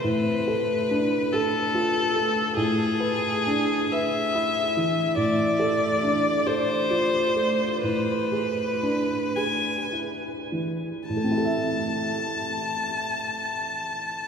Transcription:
0.03 A2 B4
0.47 A4
0.91 D4
1.33 A4
1.75 F4
2.16 A3
2.57 A2 G#4
3.00 B4
3.47 D4
3.92 B4 E5
4.35 E4
4.77 E3
5.17 A2 D5
5.59 A4
6.03 D4
6.46 A4 C5
6.90 F4
7.36 A3
7.83 A2 B4
8.32 G#4
8.83 D4
9.36 G#4 G#5
9.92 E4
10.52 E3
11.09 A2 A5
11.17 A3
11.24 C4
11.31 E4
11.37 A4
11.45 E5

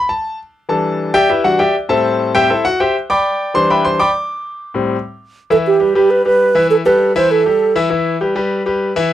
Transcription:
0.09 A5
0.69 E3 G3 D4 A4 A5
1.14 G4 D5 E5 G5
1.29 E4 G4 B4 E5
1.44 E3 G3 D4 F#4 F#5
1.59 G4 D5 E5 G5
1.89 A2 G3 C4 A4 C5 E5 A5
2.34 A2 G3 C4 G4 C5 E5 G5
2.50 E4 A4 C5 E5
2.65 F#4 F#5
2.80 G4 C5 E5 G5
3.10 D5 G5 B5 D6
3.54 E3 G3 D4 C5 C6
3.70 B4 E5 G5 B5
3.85 C5 C6
3.99 D5 G5 B5 D6
4.74 A2 G3 C4
5.50 E3 E4 A4 E5
5.67 G4
5.80 G3 G4 B4
5.95 G3 G4 B4
6.11 B4
6.25 G3 G4 B4
6.55 E3 E4 E5
6.70 A4
6.85 G3 G4 A4 B4
7.16 E3 E4 C5 E5
7.31 A4
7.46 G3 G4 A4
7.75 E3 E4 E5
7.90 E3 E4 E5
8.21 G3 G4 B4
8.36 G3 G4 B4
8.66 G3 G4 B4
8.96 E3 E4 E5

